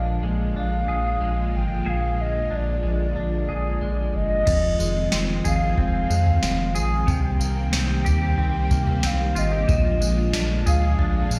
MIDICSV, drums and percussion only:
0, 0, Header, 1, 2, 480
1, 0, Start_track
1, 0, Tempo, 652174
1, 1370, Time_signature, 4, 2, 24, 8
1, 8383, End_track
2, 0, Start_track
2, 0, Title_t, "Drums"
2, 3290, Note_on_c, 9, 43, 114
2, 3290, Note_on_c, 9, 49, 102
2, 3290, Note_on_c, 9, 54, 67
2, 3291, Note_on_c, 9, 36, 115
2, 3364, Note_off_c, 9, 43, 0
2, 3364, Note_off_c, 9, 49, 0
2, 3364, Note_off_c, 9, 54, 0
2, 3365, Note_off_c, 9, 36, 0
2, 3533, Note_on_c, 9, 54, 65
2, 3606, Note_off_c, 9, 54, 0
2, 3768, Note_on_c, 9, 38, 117
2, 3770, Note_on_c, 9, 54, 102
2, 3841, Note_off_c, 9, 38, 0
2, 3844, Note_off_c, 9, 54, 0
2, 4011, Note_on_c, 9, 43, 66
2, 4011, Note_on_c, 9, 54, 72
2, 4085, Note_off_c, 9, 43, 0
2, 4085, Note_off_c, 9, 54, 0
2, 4250, Note_on_c, 9, 36, 84
2, 4251, Note_on_c, 9, 43, 63
2, 4324, Note_off_c, 9, 36, 0
2, 4325, Note_off_c, 9, 43, 0
2, 4493, Note_on_c, 9, 54, 66
2, 4567, Note_off_c, 9, 54, 0
2, 4610, Note_on_c, 9, 43, 77
2, 4684, Note_off_c, 9, 43, 0
2, 4730, Note_on_c, 9, 38, 96
2, 4731, Note_on_c, 9, 54, 92
2, 4804, Note_off_c, 9, 38, 0
2, 4804, Note_off_c, 9, 54, 0
2, 4971, Note_on_c, 9, 54, 64
2, 5044, Note_off_c, 9, 54, 0
2, 5211, Note_on_c, 9, 36, 115
2, 5211, Note_on_c, 9, 43, 121
2, 5211, Note_on_c, 9, 54, 67
2, 5284, Note_off_c, 9, 36, 0
2, 5284, Note_off_c, 9, 43, 0
2, 5284, Note_off_c, 9, 54, 0
2, 5451, Note_on_c, 9, 54, 66
2, 5525, Note_off_c, 9, 54, 0
2, 5688, Note_on_c, 9, 38, 118
2, 5690, Note_on_c, 9, 54, 97
2, 5762, Note_off_c, 9, 38, 0
2, 5764, Note_off_c, 9, 54, 0
2, 5933, Note_on_c, 9, 43, 65
2, 5933, Note_on_c, 9, 54, 68
2, 6007, Note_off_c, 9, 43, 0
2, 6007, Note_off_c, 9, 54, 0
2, 6170, Note_on_c, 9, 36, 87
2, 6174, Note_on_c, 9, 43, 69
2, 6243, Note_off_c, 9, 36, 0
2, 6247, Note_off_c, 9, 43, 0
2, 6409, Note_on_c, 9, 36, 91
2, 6410, Note_on_c, 9, 54, 70
2, 6483, Note_off_c, 9, 36, 0
2, 6483, Note_off_c, 9, 54, 0
2, 6529, Note_on_c, 9, 43, 80
2, 6603, Note_off_c, 9, 43, 0
2, 6647, Note_on_c, 9, 38, 100
2, 6647, Note_on_c, 9, 54, 94
2, 6720, Note_off_c, 9, 38, 0
2, 6721, Note_off_c, 9, 54, 0
2, 6891, Note_on_c, 9, 54, 68
2, 6964, Note_off_c, 9, 54, 0
2, 7129, Note_on_c, 9, 36, 115
2, 7129, Note_on_c, 9, 43, 125
2, 7129, Note_on_c, 9, 54, 69
2, 7203, Note_off_c, 9, 36, 0
2, 7203, Note_off_c, 9, 43, 0
2, 7203, Note_off_c, 9, 54, 0
2, 7373, Note_on_c, 9, 54, 69
2, 7446, Note_off_c, 9, 54, 0
2, 7606, Note_on_c, 9, 38, 120
2, 7608, Note_on_c, 9, 54, 102
2, 7680, Note_off_c, 9, 38, 0
2, 7682, Note_off_c, 9, 54, 0
2, 7851, Note_on_c, 9, 43, 70
2, 7851, Note_on_c, 9, 54, 73
2, 7925, Note_off_c, 9, 43, 0
2, 7925, Note_off_c, 9, 54, 0
2, 8085, Note_on_c, 9, 36, 84
2, 8087, Note_on_c, 9, 43, 68
2, 8159, Note_off_c, 9, 36, 0
2, 8161, Note_off_c, 9, 43, 0
2, 8325, Note_on_c, 9, 54, 73
2, 8383, Note_off_c, 9, 54, 0
2, 8383, End_track
0, 0, End_of_file